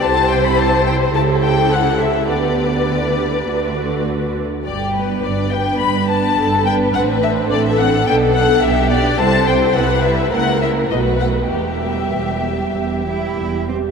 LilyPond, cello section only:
\new Staff \with { instrumentName = "Cello section" } { \clef bass \time 4/4 \key g \major \tempo 4 = 105 << { r1 | r1 | r1 | r1 |
\key e \minor r1 | r2 r8 e'4 c'8 | } \\ { c2 cis2 | d2 d4. r8 | g,4 g,4 g,4 g,4 | a,4 a,4 b,4 b,4 |
c4 c4 cis4 b,4 | e,4 e,4 e,8 r8 e,4 | } >> }